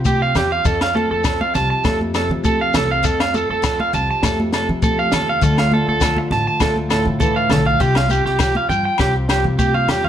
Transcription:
Already playing: upright bass C3, steel-string acoustic guitar F3 C4
0.05 steel-string acoustic guitar F4, clean electric guitar G4, kick, high conga, shekere
0.22 clean electric guitar F5
0.35 upright bass E2, steel-string acoustic guitar F4, clean electric guitar G4, snare, low conga, low agogo, shekere
0.52 clean electric guitar F5
0.65 steel-string acoustic guitar F2 A4, upright bass F2, clean electric guitar A4, kick, shekere
0.81 clean electric guitar F5, snare, low agogo
0.95 steel-string acoustic guitar C4, clean electric guitar A4, high conga
1.11 upright bass F2, clean electric guitar A4
1.24 steel-string acoustic guitar F3, clean electric guitar A4, kick, snare, low agogo, shekere
1.41 clean electric guitar F5, high conga
1.55 upright bass C2, steel-string acoustic guitar G4, clean electric guitar A5, snare, low conga, shekere
1.70 clean electric guitar A5
1.84 upright bass F2, steel-string acoustic guitar A3, clean electric guitar A4, kick, snare, high conga, low agogo, shekere
2.01 high conga
2.14 steel-string acoustic guitar C3, clean electric guitar A4, snare, low agogo, shekere
2.29 upright bass F3, low conga
2.44 steel-string acoustic guitar C4, clean electric guitar A4, kick, high conga, shekere
2.61 clean electric guitar F5
2.74 upright bass C2, steel-string acoustic guitar A4, clean electric guitar A4, snare, low conga, low agogo, shekere
2.91 clean electric guitar F5
3.03 steel-string acoustic guitar F2 A4, upright bass F2, clean electric guitar A4, kick, shekere
3.20 clean electric guitar F5, snare, low agogo
3.34 steel-string acoustic guitar C4, clean electric guitar A4, high conga, shekere
3.50 upright bass F2, clean electric guitar A4
3.62 steel-string acoustic guitar F3, clean electric guitar A4, kick, snare, low agogo, shekere
3.80 clean electric guitar F5, high conga
3.93 upright bass C2, steel-string acoustic guitar G4, clean electric guitar A5, low conga, shekere
4.11 clean electric guitar A5
4.23 upright bass F2, steel-string acoustic guitar A3, clean electric guitar A4, kick, snare, high conga, low agogo, shekere
4.40 high conga
4.52 steel-string acoustic guitar C3, clean electric guitar A4, snare, low agogo, shekere
4.69 upright bass F3, low conga
4.82 steel-string acoustic guitar C4, clean electric guitar A4, kick, high conga, shekere
4.99 clean electric guitar F5
5.12 upright bass D#2, steel-string acoustic guitar A4, clean electric guitar A4, snare, low conga, low agogo, shekere
5.29 clean electric guitar F5
5.41 upright bass D2, steel-string acoustic guitar D3 F3 A3 D4 F4, clean electric guitar A4, kick, shekere
5.58 clean electric guitar F5, snare, low agogo
5.72 steel-string acoustic guitar D4, clean electric guitar A4, high conga
5.88 upright bass D2, clean electric guitar A4
6.01 steel-string acoustic guitar F3, clean electric guitar A4, kick, snare, low agogo, shekere
6.17 muted clean electric guitar stroke, high conga
6.31 upright bass A1, steel-string acoustic guitar F4, clean electric guitar A5, snare, low conga
6.47 clean electric guitar A5
6.60 upright bass D2, steel-string acoustic guitar A3, clean electric guitar A4, kick, snare, high conga, low agogo, shekere
6.76 high conga
6.90 steel-string acoustic guitar A2, clean electric guitar A4, snare, low agogo, shekere
7.05 upright bass D3, low conga
7.20 steel-string acoustic guitar E3, clean electric guitar A4, kick, high conga, shekere
7.36 clean electric guitar F5
7.50 upright bass B1, steel-string acoustic guitar D3, clean electric guitar A4, snare, low conga, low agogo, shekere
7.66 clean electric guitar F5
7.80 upright bass C2, steel-string acoustic guitar C3 F4, clean electric guitar G4, kick, shekere
7.95 clean electric guitar F5, snare, low agogo
8.09 steel-string acoustic guitar F4, clean electric guitar G4, high conga, shekere
8.25 upright bass C2, clean electric guitar G4, snare
8.39 steel-string acoustic guitar F3, clean electric guitar G4, kick, snare, low agogo, shekere
8.55 clean electric guitar F5, high conga
8.69 upright bass G2, steel-string acoustic guitar F4, clean electric guitar G5, low conga, shekere
8.85 clean electric guitar G5
8.98 upright bass C2, steel-string acoustic guitar C4, clean electric guitar G4, kick, snare, high conga, low agogo, shekere
9.29 steel-string acoustic guitar G2, clean electric guitar G4, snare, low agogo, shekere
9.44 upright bass C3, low conga
9.59 steel-string acoustic guitar F4, clean electric guitar G4, kick, high conga, shekere
9.74 clean electric guitar F5, high conga
9.88 upright bass E2, steel-string acoustic guitar F4, clean electric guitar G4, snare, low conga, low agogo, shekere
10.04 clean electric guitar F5, low conga

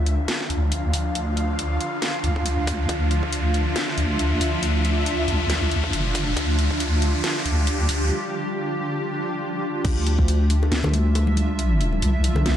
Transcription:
Already playing: wobble bass D2, ambient pad D4 F4 F5, riser
0.06 closed hi-hat
0.28 snare, closed hi-hat
0.41 snare
0.50 wobble bass D2, closed hi-hat
0.72 closed hi-hat
0.94 open hi-hat
1.15 closed hi-hat
1.37 closed hi-hat
1.59 closed hi-hat
1.81 closed hi-hat
2.02 snare, closed hi-hat
2.24 wobble bass D2, closed hi-hat
2.36 kick
2.46 closed hi-hat
2.67 kick, open hi-hat
2.89 wobble bass D2, ambient pad E5, kick, closed hi-hat
3.11 closed hi-hat
3.23 kick
3.33 closed hi-hat
3.54 closed hi-hat
3.76 snare, closed hi-hat
3.88 snare
3.98 wobble bass D2, closed hi-hat
4.19 closed hi-hat
4.41 wobble bass D2, open hi-hat
4.63 closed hi-hat
4.85 closed hi-hat
5.06 closed hi-hat
5.28 wobble bass D2, closed hi-hat
5.50 snare, closed hi-hat
5.71 closed hi-hat
5.84 kick
5.93 wobble bass F1, closed hi-hat
6.15 kick, open hi-hat
6.36 wobble bass D2, ambient pad G4, kick, closed hi-hat
6.59 closed hi-hat
6.71 kick
6.80 closed hi-hat
7.02 closed hi-hat
7.24 snare, closed hi-hat
7.36 snare
7.45 wobble bass D2, closed hi-hat
7.67 closed hi-hat
7.89 open hi-hat
9.84 wobble bass D2, ambient pad D4 F4 E5, kick, closed hi-hat, crash
10.07 closed hi-hat
10.19 kick
10.28 closed hi-hat
10.50 open hi-hat
10.63 high bongo
10.72 wobble bass D2, snare, closed hi-hat
10.84 high bongo, low conga
10.93 closed hi-hat, high conga
11.15 closed hi-hat, high bongo
11.27 high conga
11.37 closed hi-hat, high conga
11.59 closed hi-hat
11.81 closed hi-hat
11.92 high conga
12.02 wobble bass C2, closed hi-hat
12.24 open hi-hat
12.36 high bongo, low conga
12.46 snare, closed hi-hat

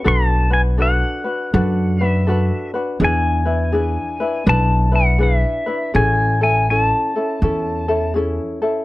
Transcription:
Already playing: pedal steel guitar C#6
0.04 upright bass B1, ukulele D4 F#4 A4 B4, pedal steel guitar A5
0.50 ukulele D4 F#4 B4, pedal steel guitar G#5
0.78 ukulele D4 F#4 A4 B4
0.82 pedal steel guitar F#5
1.24 ukulele D4 F#4 B4
1.53 upright bass F#2, ukulele D4 F#4 A4 B4
2.01 ukulele D4 F#4 B4
2.06 pedal steel guitar E5
2.27 ukulele D4 F#4 A4 B4
2.74 ukulele D4 F#4 B4
3.00 upright bass E2, ukulele D4 E4 G#4 B4
3.04 pedal steel guitar G#5
3.45 ukulele D4 E4 B4
3.72 ukulele D4 E4 G#4 B4
4.20 ukulele D4 E4 B4
4.46 upright bass B1, ukulele D4 E4 B4, pedal steel guitar A5
4.92 ukulele D4 E4 B4, pedal steel guitar F#5
5.18 ukulele D4 E4 G#4 B4
5.23 pedal steel guitar E5
5.66 ukulele D4 E4 B4
5.94 upright bass A1, ukulele C#4 E4 G#4 A4, pedal steel guitar G#5
6.41 ukulele C#4 E4 A4, pedal steel guitar G#5
6.70 ukulele C#4 E4 A4, pedal steel guitar A5
7.16 ukulele C#4 E4 A4
7.42 upright bass E2, ukulele C#4 E4 A4
7.88 ukulele C#4 E4 A4
8.14 ukulele C#4 E4 G#4 A4
8.62 ukulele C#4 E4 A4

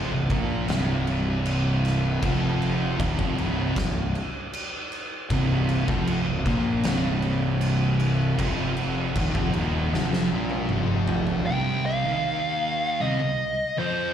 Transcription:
Already playing: distorted electric guitar F2 F3
0.11 fingered electric bass C1, distorted electric guitar C2
0.30 fingered electric bass A#1, distorted electric guitar A#2 A#3, kick, crash
0.68 fingered electric bass C1, distorted electric guitar C2 C3, snare, crash
1.07 crash
1.46 crash
1.85 snare, crash
2.22 fingered electric bass F1, distorted electric guitar F2 F3, kick, crash
2.62 crash
2.98 fingered electric bass D#1, distorted electric guitar D#2 D#3, kick, crash
3.17 fingered electric bass F1, distorted electric guitar F2 F3, kick
3.37 fingered electric bass C1, distorted electric guitar C2 C3, crash
3.76 fingered electric bass C1, distorted electric guitar C2, kick, snare, crash
4.15 crash
4.53 crash
4.92 crash
5.30 fingered electric bass C1, distorted electric guitar C2 C3, kick, crash
5.69 crash
5.88 fingered electric bass F1, distorted electric guitar F2 F3, kick
6.07 crash
6.26 fingered electric bass C1, distorted electric guitar C2
6.46 fingered electric bass A#1, distorted electric guitar A#2 A#3, kick, crash
6.83 fingered electric bass C1, distorted electric guitar C2 C3, snare, crash
7.22 crash
7.61 crash
8.00 crash
8.39 fingered electric bass F1, distorted electric guitar F2 F3, kick, crash
8.77 crash
9.15 fingered electric bass D#1, distorted electric guitar D#2 D#3, kick, crash
9.35 fingered electric bass F1, distorted electric guitar F2 F3, kick
9.54 fingered electric bass D#1, distorted electric guitar D#2 D#3, crash
9.93 fingered electric bass F1, distorted electric guitar F2 F3, snare
10.13 snare
10.32 fingered electric bass A#1, distorted electric guitar A#2 A#3
10.50 high tom
10.69 fingered electric bass F1, distorted electric guitar F2 F3, mid tom
11.07 floor tom
11.27 floor tom
11.46 distorted electric guitar C2 C3, lead electric guitar G5
11.86 lead electric guitar F5
12.04 distorted electric guitar D#2 D#3
13.01 distorted electric guitar C2 C3, lead electric guitar D#5
13.20 distorted electric guitar C2
13.77 distorted electric guitar F2 F3, lead electric guitar C5

